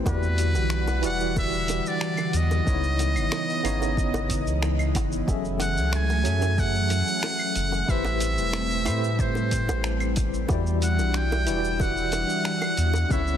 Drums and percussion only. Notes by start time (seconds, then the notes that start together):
0.06 kick, high bongo, shaker
0.23 shaker
0.38 closed hi-hat, shaker
0.55 high bongo, shaker
0.70 finger snap, shaker
0.87 high bongo, shaker
1.03 closed hi-hat, shaker
1.20 shaker
1.36 kick, high bongo, shaker
1.53 shaker
1.68 closed hi-hat, high bongo, shaker
1.86 shaker
2.01 finger snap, shaker
2.17 high bongo, claves, shaker
2.33 closed hi-hat, shaker
2.51 high bongo, shaker
2.67 kick, shaker
2.83 shaker
2.99 closed hi-hat, high bongo, shaker
3.16 claves, shaker
3.32 finger snap, high bongo, shaker
3.50 shaker
3.65 closed hi-hat, claves, shaker
3.82 high bongo, shaker
3.97 kick, shaker
4.14 high bongo, shaker
4.30 kick, closed hi-hat, shaker
4.47 shaker
4.62 finger snap, high bongo, shaker
4.79 claves, shaker
4.95 kick, closed hi-hat, high bongo, shaker
5.12 shaker
5.28 kick, high bongo, shaker
5.45 shaker
5.60 closed hi-hat, high bongo, shaker
5.77 shaker
5.93 finger snap, shaker
6.10 high bongo, shaker
6.25 closed hi-hat, shaker
6.42 high bongo, shaker
6.58 kick, shaker
6.75 shaker
6.90 closed hi-hat, high bongo, shaker
7.08 shaker
7.23 finger snap, high bongo, shaker
7.39 claves, shaker
7.55 closed hi-hat, shaker
7.72 high bongo, shaker
7.88 kick, shaker
8.05 high bongo, shaker
8.20 closed hi-hat, shaker
8.38 shaker
8.53 finger snap, high bongo, shaker
8.71 shaker
8.86 closed hi-hat, high bongo, claves, shaker
9.04 shaker
9.19 kick, shaker
9.35 high bongo, shaker
9.51 kick, closed hi-hat, shaker
9.69 high bongo, shaker
9.84 finger snap, shaker
10.00 claves, shaker
10.16 kick, closed hi-hat, high bongo, shaker
10.34 shaker
10.49 kick, high bongo, shaker
10.67 shaker
10.82 closed hi-hat, shaker
10.99 high bongo, shaker
11.14 finger snap, shaker
11.32 high bongo, shaker
11.47 closed hi-hat, shaker
11.64 shaker
11.80 kick, high bongo, shaker
11.97 shaker
12.12 closed hi-hat, high bongo, shaker
12.30 shaker
12.45 finger snap, shaker
12.62 high bongo, claves, shaker
12.77 closed hi-hat, shaker
12.94 high bongo, shaker
13.10 kick, shaker
13.27 shaker